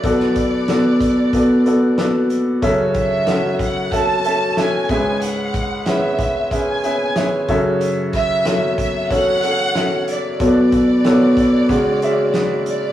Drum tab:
HH |x-x-x-x-x-x-x-x-|x-x-x-x-x-x-x-x-|x-x-x-x-x-x-x-x-|x-x-x-x-x-x-x-x-|
SD |-o--o-------o---|----o-------o---|----o-------o---|----o-------o---|
BD |o-o---o-o-------|o-o---o-o-----o-|--o---o-o-----o-|--o---o-o-------|

HH |x-x-x-x-x-x-x-x-|
SD |----o-------o---|
BD |o-o---o-o-------|